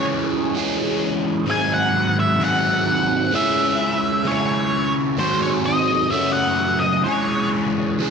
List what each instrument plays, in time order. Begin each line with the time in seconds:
Already playing: overdriven electric guitar E3 G#3 C#4 G#4
0.54 overdriven electric guitar E3 G#3 C#4 G#4
1.46 overdriven electric guitar G#2 D#3 F#3 C4 D#4 G#4
1.51 lead electric guitar G#5
1.74 lead electric guitar F#5
2.20 lead electric guitar E5
2.40 overdriven electric guitar G#2 D#3 F#3 C4 D#4 G#4
2.44 lead electric guitar F#5
3.32 overdriven electric guitar C#3 G#3 C#4 E4 G#4, lead electric guitar E5
4.24 overdriven electric guitar C#3 G#3 C#4 E4 G#4, lead electric guitar C#5
5.18 overdriven electric guitar G#2 D#3 F#3 C4 F#4 G#4, lead electric guitar C5
5.42 lead electric guitar C#5
5.66 lead electric guitar D#5
6.10 overdriven electric guitar F#2 C#3 F#3 A3 C#4 F#4, lead electric guitar E5
6.33 lead electric guitar F#5
6.80 lead electric guitar D#5
7.04 overdriven electric guitar E3 G#3 C#4, lead electric guitar C#5
7.09 overdriven electric guitar G#4
7.99 overdriven electric guitar E3 G#3 C#4 G#4